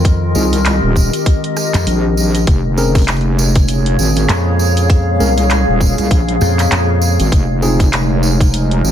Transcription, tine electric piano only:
0.36 0.52 C4 medium
0.36 0.52 D#4 medium
0.36 0.52 F4 medium
0.36 0.52 G#4 medium
2.78 3.02 C4 medium
2.78 3.02 C#4 medium
2.78 3.02 G#4 medium
2.78 3.02 A#4 loud
5.20 5.37 C4 medium
5.20 5.37 C#4 medium
5.20 5.37 G#4 medium
5.20 5.37 A#4 medium
7.63 7.87 C4 medium
7.63 7.87 D#4 medium
7.63 7.87 F4 medium
7.63 7.87 G#4 medium

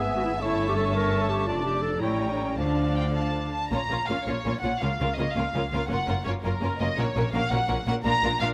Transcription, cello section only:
0.00 0.39 G#2 soft
0.41 1.48 G2 medium
1.48 2.03 F2 soft
2.03 2.58 A2 medium
2.59 3.53 D3 soft
3.71 3.78 A#2 soft
3.89 3.96 A#2 soft
4.08 4.16 A#2 soft
4.26 4.33 A#2 medium
4.46 4.53 A#2 medium
4.63 4.70 A#2 soft
4.82 4.89 C#3 medium
5.00 5.07 C#3 medium
5.19 5.26 C#3 medium
5.37 5.43 C#3 medium
5.54 5.61 C#3 medium
5.72 5.79 C#3 medium
5.90 5.97 F#2 soft
6.08 6.15 F#2 medium
6.26 6.33 F#2 medium
6.44 6.51 F#2 medium
6.62 6.69 F#2 medium
6.80 6.87 F#2 medium
6.98 7.05 A#2 medium
7.16 7.23 A#2 medium
7.33 7.40 A#2 medium
7.51 7.58 A#2 medium
7.69 7.76 A#2 medium
7.87 7.94 A#2 medium
8.05 8.12 A#2 medium
8.23 8.30 A#2 medium
8.41 8.48 A#2 medium

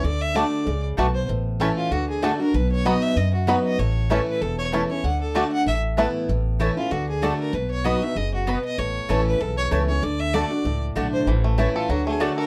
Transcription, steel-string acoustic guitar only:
0.04 0.33 D3 medium
0.35 0.65 D3 medium
0.35 0.65 A3 medium
0.35 0.65 D4 loud
0.35 0.65 F#4 loud
0.67 0.96 C#3 medium
0.98 1.28 B2 medium
1.29 1.89 A2 medium
1.60 1.90 E3 medium
1.60 1.90 A3 medium
1.60 1.90 C#4 loud
1.60 1.90 E4 loud
1.92 2.21 D3 medium
2.22 2.39 D3 medium
2.22 2.39 A3 medium
2.22 2.40 D4 medium
2.22 2.38 F#4 medium
2.40 2.54 D4 soft
2.40 2.53 F#4 medium
2.54 3.14 B2 medium
2.85 3.15 F#3 medium
2.85 3.15 B3 loud
2.85 3.16 D#4 medium
2.85 3.16 F#4 loud
3.17 3.76 F#2 medium
3.47 3.77 F#3 medium
3.47 3.78 B3 loud
3.47 3.78 D#4 medium
3.47 3.78 F#4 medium
3.79 4.39 A2 medium
4.10 4.40 E3 medium
4.10 4.40 A3 loud
4.10 4.40 C#4 loud
4.10 4.41 E4 medium
4.42 5.01 E2 medium
4.72 4.89 E3 medium
4.72 4.89 A3 medium
4.72 4.89 C#4 medium
4.72 4.88 E4 medium
4.90 5.04 C#4 soft
4.90 5.03 E4 medium
5.04 5.34 D3 medium
5.35 5.65 D3 medium
5.35 5.65 A3 medium
5.35 5.65 D4 medium
5.35 5.66 F#4 medium
5.66 6.26 A2 medium
5.98 6.27 E3 medium
5.98 6.28 A3 medium
5.98 6.28 B3 medium
5.98 6.28 E4 loud
6.29 6.89 A2 medium
6.60 6.76 E3 medium
6.60 6.77 A3 loud
6.60 6.77 C#4 loud
6.60 6.76 E4 loud
6.77 6.91 C#4 soft
6.77 6.91 E4 medium
6.91 7.21 D3 medium
7.22 7.52 D3 medium
7.22 7.52 A3 loud
7.22 7.53 D4 medium
7.22 7.53 F#4 loud
7.53 8.13 B2 medium
7.84 8.01 F#3 medium
7.84 8.01 B3 loud
7.84 8.01 D#4 loud
7.84 8.00 F#4 loud
8.02 8.16 D#4 medium
8.02 8.15 F#4 medium
8.16 8.46 C#3 medium
8.47 8.77 B2 medium
8.78 9.38 A2 loud
9.09 9.39 E3 loud
9.09 9.39 A3 loud
9.09 9.40 C#4 loud
9.09 9.40 E4 loud
9.41 10.00 E2 medium
9.71 9.88 E3 medium
9.71 9.88 A3 medium
9.71 9.88 C#4 medium
9.71 9.87 E4 medium
9.88 10.03 C#4 soft
9.88 10.02 E4 medium
10.03 10.32 D3 medium
10.33 10.50 D3 loud
10.33 10.50 A3 loud
10.33 10.51 D4 loud
10.33 10.49 F#4 loud
10.51 10.65 D4 medium
10.51 10.64 F#4 medium
10.65 11.25 A2 medium
10.95 11.26 D3 medium
10.95 11.26 A3 loud
10.95 11.26 D4 medium
10.95 11.26 F#4 loud
11.27 11.87 A2 medium
11.58 11.88 E3 medium
11.58 11.88 A3 medium
11.58 11.88 C#4 medium
11.58 11.89 E4 medium
11.90 12.19 D3 loud
12.20 12.47 D3 loud
12.20 12.47 A3 medium
12.20 12.47 D4 medium
12.20 12.47 F#4 medium

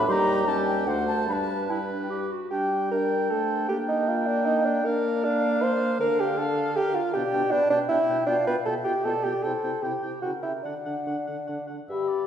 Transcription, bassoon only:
0.07 0.83 D#2 medium
0.86 1.29 D2 medium
1.27 2.31 G2 medium
2.51 2.88 G4 medium
2.91 3.32 A#4 loud
3.30 3.68 A4 loud
3.69 3.78 G4 medium
3.88 4.10 D#4 medium
4.08 4.28 F4 medium
4.27 4.47 D4 medium
4.46 4.67 D#4 loud
4.65 4.87 D4 medium
4.85 5.26 A#4 loud
5.25 5.64 D4 loud
5.63 6.00 C5 loud
6.00 6.21 A#4 loud
6.20 6.40 G4 loud
6.38 6.78 A4 loud
6.76 6.96 G4 loud
6.95 7.13 F4 loud
7.14 7.53 G4 loud
7.51 7.70 D4 loud
7.70 7.79 D4 loud
7.89 8.26 E4 loud
8.27 8.46 D4 loud
8.47 8.56 B4 loud
8.66 8.75 A4 medium
8.85 9.06 G4 medium
9.05 9.25 A4 loud
9.24 9.44 G4 loud
9.43 9.84 A4 medium
9.83 10.21 G4 medium
10.22 10.31 F#4 medium
10.43 10.52 E4 medium
10.63 11.67 D4 medium
11.89 12.27 G2 medium

